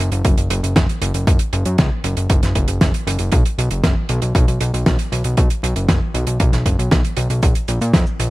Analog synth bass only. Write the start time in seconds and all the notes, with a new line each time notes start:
0.00 F#1
0.12 F#1
0.25 F#1
0.38 F#1
0.50 F#1
0.63 F#1
0.76 F#1
1.02 F#1
1.14 F#1
1.27 F#1
1.53 F#1
1.66 F#2
1.78 C#2
2.04 F#1
2.17 F#1
2.30 F#1
2.43 F#1
2.55 F#1
2.68 F#1
2.81 F#1
3.07 F#1
3.20 F#1
3.32 B1
3.58 B1
3.71 F#1
3.84 F#1
4.09 B1
4.22 B1
4.35 B1
4.48 B1
4.61 B1
4.74 B1
4.86 B1
5.12 B1
5.25 B1
5.37 B1
5.63 B1
5.76 F#1
5.89 F#1
6.14 B1
6.27 B1
6.40 B1
6.53 B1
6.66 F#1
6.79 B1
6.91 B1
7.17 B1
7.30 B1
7.43 A#1
7.68 A#1
7.81 A#2
7.94 F2
8.20 A#1